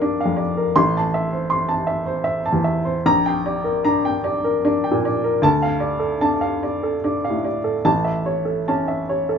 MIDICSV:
0, 0, Header, 1, 2, 480
1, 0, Start_track
1, 0, Key_signature, -1, "minor"
1, 0, Tempo, 776197
1, 464, Time_signature, 3, 2, 24, 8
1, 3347, Tempo, 798935
1, 4307, Tempo, 836820
1, 5667, End_track
2, 0, Start_track
2, 0, Title_t, "Upright piano"
2, 0, Program_c, 0, 0
2, 0, Control_c, 0, 64, 127
2, 0, Note_on_c, 0, 34, 60
2, 0, Note_on_c, 0, 62, 52
2, 0, Note_on_c, 0, 70, 48
2, 0, Note_on_c, 0, 74, 45
2, 0, Note_on_c, 0, 77, 50
2, 0, Note_on_c, 0, 82, 53
2, 9, Note_off_c, 0, 62, 0
2, 9, Note_off_c, 0, 74, 0
2, 9, Note_on_c, 0, 62, 55
2, 9, Note_on_c, 0, 74, 55
2, 72, Note_off_c, 0, 70, 0
2, 127, Note_off_c, 0, 77, 0
2, 127, Note_on_c, 0, 77, 50
2, 156, Note_on_c, 0, 41, 46
2, 190, Note_off_c, 0, 74, 0
2, 225, Note_on_c, 0, 74, 52
2, 253, Note_off_c, 0, 62, 0
2, 307, Note_off_c, 0, 77, 0
2, 354, Note_on_c, 0, 70, 46
2, 405, Note_off_c, 0, 41, 0
2, 416, Note_off_c, 0, 74, 0
2, 440, Note_off_c, 0, 34, 0
2, 467, Note_on_c, 0, 84, 79
2, 469, Note_off_c, 0, 70, 0
2, 471, Note_on_c, 0, 33, 62
2, 476, Note_off_c, 0, 82, 0
2, 476, Control_c, 0, 64, 0
2, 586, Control_c, 0, 64, 127
2, 601, Note_on_c, 0, 81, 54
2, 656, Note_off_c, 0, 84, 0
2, 705, Note_on_c, 0, 76, 54
2, 782, Note_off_c, 0, 81, 0
2, 820, Note_on_c, 0, 72, 43
2, 894, Note_off_c, 0, 76, 0
2, 927, Note_on_c, 0, 84, 59
2, 1010, Note_off_c, 0, 72, 0
2, 1042, Note_on_c, 0, 81, 54
2, 1122, Note_off_c, 0, 84, 0
2, 1155, Note_on_c, 0, 76, 47
2, 1239, Note_off_c, 0, 81, 0
2, 1273, Note_on_c, 0, 72, 51
2, 1356, Note_off_c, 0, 76, 0
2, 1385, Note_on_c, 0, 76, 61
2, 1475, Note_off_c, 0, 72, 0
2, 1518, Note_on_c, 0, 81, 54
2, 1563, Note_on_c, 0, 40, 49
2, 1592, Note_off_c, 0, 76, 0
2, 1634, Note_on_c, 0, 76, 54
2, 1719, Note_off_c, 0, 81, 0
2, 1762, Note_on_c, 0, 72, 51
2, 1826, Note_off_c, 0, 40, 0
2, 1838, Note_off_c, 0, 76, 0
2, 1874, Note_off_c, 0, 33, 0
2, 1889, Note_off_c, 0, 72, 0
2, 1892, Note_on_c, 0, 34, 69
2, 1893, Note_on_c, 0, 82, 89
2, 1907, Control_c, 0, 64, 0
2, 1989, Control_c, 0, 64, 127
2, 2016, Note_on_c, 0, 79, 59
2, 2088, Note_off_c, 0, 82, 0
2, 2139, Note_on_c, 0, 74, 55
2, 2210, Note_off_c, 0, 79, 0
2, 2252, Note_on_c, 0, 70, 47
2, 2333, Note_off_c, 0, 74, 0
2, 2378, Note_on_c, 0, 82, 66
2, 2379, Note_on_c, 0, 62, 63
2, 2452, Note_off_c, 0, 70, 0
2, 2505, Note_on_c, 0, 79, 59
2, 2575, Note_off_c, 0, 82, 0
2, 2622, Note_on_c, 0, 74, 59
2, 2640, Note_off_c, 0, 62, 0
2, 2699, Note_off_c, 0, 79, 0
2, 2748, Note_on_c, 0, 70, 56
2, 2817, Note_off_c, 0, 74, 0
2, 2873, Note_on_c, 0, 62, 58
2, 2874, Note_on_c, 0, 74, 62
2, 2940, Note_off_c, 0, 70, 0
2, 2993, Note_on_c, 0, 79, 53
2, 3038, Note_on_c, 0, 46, 51
2, 3063, Note_off_c, 0, 74, 0
2, 3124, Note_on_c, 0, 74, 57
2, 3127, Note_off_c, 0, 62, 0
2, 3182, Note_off_c, 0, 79, 0
2, 3240, Note_on_c, 0, 70, 54
2, 3290, Note_off_c, 0, 46, 0
2, 3309, Note_off_c, 0, 74, 0
2, 3322, Note_off_c, 0, 34, 0
2, 3352, Note_on_c, 0, 38, 65
2, 3354, Note_off_c, 0, 70, 0
2, 3359, Note_on_c, 0, 81, 78
2, 3361, Control_c, 0, 64, 0
2, 3471, Control_c, 0, 64, 127
2, 3474, Note_on_c, 0, 77, 60
2, 3543, Note_off_c, 0, 81, 0
2, 3580, Note_on_c, 0, 74, 55
2, 3662, Note_off_c, 0, 77, 0
2, 3697, Note_on_c, 0, 69, 47
2, 3775, Note_off_c, 0, 74, 0
2, 3828, Note_on_c, 0, 81, 63
2, 3829, Note_on_c, 0, 62, 53
2, 3894, Note_off_c, 0, 69, 0
2, 3947, Note_on_c, 0, 77, 55
2, 4019, Note_off_c, 0, 81, 0
2, 4078, Note_on_c, 0, 74, 50
2, 4083, Note_off_c, 0, 62, 0
2, 4138, Note_off_c, 0, 77, 0
2, 4200, Note_on_c, 0, 69, 45
2, 4265, Note_off_c, 0, 74, 0
2, 4325, Note_on_c, 0, 74, 49
2, 4326, Note_on_c, 0, 62, 46
2, 4385, Note_off_c, 0, 69, 0
2, 4441, Note_on_c, 0, 77, 47
2, 4473, Note_on_c, 0, 45, 43
2, 4505, Note_off_c, 0, 74, 0
2, 4557, Note_on_c, 0, 74, 45
2, 4569, Note_off_c, 0, 62, 0
2, 4624, Note_off_c, 0, 77, 0
2, 4669, Note_on_c, 0, 69, 46
2, 4725, Note_off_c, 0, 45, 0
2, 4743, Note_off_c, 0, 74, 0
2, 4764, Note_off_c, 0, 38, 0
2, 4788, Note_off_c, 0, 69, 0
2, 4788, Note_on_c, 0, 33, 54
2, 4788, Note_on_c, 0, 81, 71
2, 4798, Control_c, 0, 64, 0
2, 4900, Note_on_c, 0, 76, 47
2, 4903, Control_c, 0, 64, 127
2, 4981, Note_off_c, 0, 81, 0
2, 5023, Note_on_c, 0, 73, 42
2, 5097, Note_off_c, 0, 76, 0
2, 5134, Note_on_c, 0, 69, 38
2, 5218, Note_off_c, 0, 73, 0
2, 5264, Note_on_c, 0, 81, 48
2, 5266, Note_on_c, 0, 61, 47
2, 5333, Note_off_c, 0, 69, 0
2, 5379, Note_on_c, 0, 76, 43
2, 5458, Note_off_c, 0, 81, 0
2, 5502, Note_on_c, 0, 73, 44
2, 5523, Note_off_c, 0, 61, 0
2, 5575, Note_off_c, 0, 76, 0
2, 5615, Note_on_c, 0, 69, 46
2, 5667, Note_off_c, 0, 33, 0
2, 5667, Note_off_c, 0, 69, 0
2, 5667, Note_off_c, 0, 73, 0
2, 5667, End_track
0, 0, End_of_file